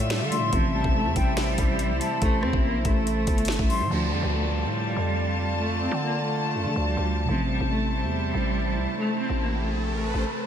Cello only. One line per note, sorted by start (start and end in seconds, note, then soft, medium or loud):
0.10 0.50 G3 medium
0.53 0.70 F3 loud
0.74 0.91 G3 medium
0.95 1.12 A3 medium
1.16 2.18 G3 medium
2.22 2.39 A3 loud
2.43 2.60 C4 medium
2.64 2.81 A#3 medium
2.85 3.66 A3 medium
3.70 3.87 G3 medium
3.91 4.08 F3 loud
4.12 4.29 G3 medium
4.33 4.50 A3 medium
4.54 5.56 G3 loud
5.60 5.77 A3 medium
5.81 5.98 C4 medium
6.02 6.19 A#3 medium
6.23 6.83 A3 medium
6.87 7.26 G3 medium
7.29 7.46 F3 medium
7.50 7.67 G3 medium
7.71 7.88 A3 medium
7.92 8.94 G3 medium
8.98 9.15 A3 loud
9.19 9.36 C4 medium
9.40 9.57 A#3 medium
9.61 10.42 A3 medium